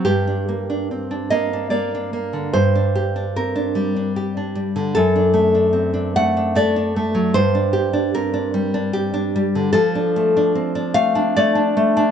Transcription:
\new Staff \with { instrumentName = "Nylon-string guitar" } { \time 3/4 \key g \minor \tempo 4 = 74 << { g'4. ees''8 d''4 | c''4 bes'4. r8 | a'4. fis''8 d''4 | c''4 bes'4. r8 |
a'4. f''8 d''4 | } \\ { g,16 d'16 bes16 d'16 c'16 d'16 bes16 d'16 bes16 d'16 bes16 d16 | g,16 d'16 g'16 d'16 c'16 d'16 g16 d'16 g'16 d'16 g16 d16 | fis,16 d'16 a16 d'16 c'16 d'16 a16 d'16 a16 d'16 a16 fis16 | g,16 d'16 g'16 d'16 c'16 d'16 g16 d'16 g'16 d'16 g16 d16 |
f16 d'16 a16 d'16 c'16 d'16 a16 d'16 a16 d'16 a16 d'16 | } >> }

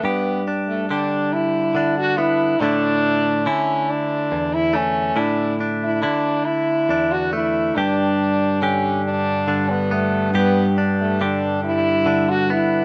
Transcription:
<<
  \new Staff \with { instrumentName = "French horn" } { \time 6/8 \key g \lydian \tempo 4. = 47 b8 r16 a16 d'8 e'8. fis'16 e'8 | d'4 cis'8 d'8. e'16 cis'8 | d'8 r16 e'16 d'8 e'8. fis'16 e'8 | d'4 cis'8 d'8. b16 a8 |
b8 r16 a16 d'8 e'8. fis'16 e'8 | }
  \new Staff \with { instrumentName = "Clean electric guitar" } { \time 6/8 \key g \lydian << { g'8 d'8 g'4 d'8 b8 | <d a d' e'>4 e'4. a8 | e'8 d'8 e'4 d'8 a8 | g'4 g'4 d'8 b8 |
g'8 d'8 g'4 d'8 b8 | } \\ { g,4 d4 d4 | a,4 d4 e,4 | a,4 d4 e,4 | g,4 d4 d4 |
g,4 d4 d4 | } >> }
  \new Staff \with { instrumentName = "Cello" } { \clef bass \time 6/8 \key g \lydian r2. | r2. | r2. | g,2.~ |
g,2. | }
>>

